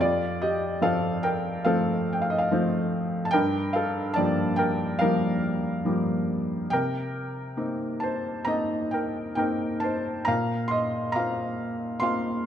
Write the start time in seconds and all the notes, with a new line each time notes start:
Already playing: F2
0.01 F4 D5
0.42 G4 D#5
0.81 F3 C4 A4 F5
1.23 A#4 G5
1.65 F3 A3 C4 A4 F5
2.13 G5
2.22 F5
2.30 D#5
2.38 F5
2.51 F3 A3 C4
3.25 A5
3.31 G2 A#4 G5
3.73 A4 F5
4.14 F3 G3 D5 A5
4.18 A#3
4.56 A#4 G5
4.99 F3 G3 A#3 A#4 F5
5.85 F3 G3 A#3
6.70 C3 A#4 G5
7.57 A#3 C4 D#4
8.00 C5 A5
8.45 A#3 C4 D#4 D#5 A#5
8.91 A#4 G5
9.35 A#3 C4 D#4 A#4 G5
9.80 C5 A5
10.25 A#2 F5 A#5
10.68 D#5 C6
11.12 A#3 C4 F4 F5 A#5
12.00 A#3 C4 F4 F5 C6